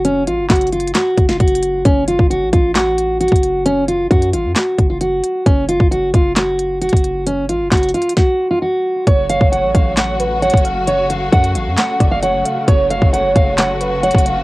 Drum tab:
HH |x-----------x-----------x--x--x--x--x---x---x---x-----------x-----x-----x---x---x---x-----------|x-----------x-----------x-----------x-----------x-----------x-----------x---x---x---x-----------|x-----------x-----------x-----x-----x-----------x-----------x-----------x-----------x-----------|x-----------x-----------x-----------x-----------x-----------x-----------x---x---x---x-----------|
CP |------------------------x-----------------------x-----------------------------------------------|------------------------------------------------x-----------------------------------------------|------------------------------------------------x-----------------------------------------------|------------------------------------------------x-----------------------------------------------|
SD |------------------------o-----------------------o-----------------o-----------------------------|------------------------------------------------o-----------------------------------------------|------------------------------------------------o-----------------------------------------------|------------------------------------------------o-----------------------------------------------|
BD |------------------------o-----------------------------------o-----------o-----------------------|o-----------------o-----------------o-----------------------------------------o-----------------|------------------------o-----------------------------------o-----------------------------------|o-----------------o-----------------o-----------------------------------------o-----------------|

HH |x-----------x-----------x--x--x--x--x---x---x---------------------------------------------------|x-----------x-----------x-----------x-----------x-----------x-----------x---x---x---x-----------|x-----------x-----------x-----x-----x-----------x-----------x-----------x-----------x-----------|x-----------x-----------x-----------x-----------x-----------x-----------x---x---x---x-----------|
CP |------------------------x-----------------------------------------------------------------------|------------------------------------------------x-----------------------------------------------|------------------------------------------------x-----------------------------------------------|------------------------------------------------x-----------------------------------------------|
SD |------------------------o-----------------------o-----------------------------------------------|------------------------------------------------o-----------------------------------------------|------------------------------------------------o-----------------------------------------------|------------------------------------------------o-----------------------------------------------|
BD |------------------------o-----------------------o-----------------------------------------------|o-----------------o-----------------o-----------------------------------------o-----------------|------------------------o-----------------------------------o-----------------------------------|o-----------------o-----------------o-----------------------------------------o-----------------|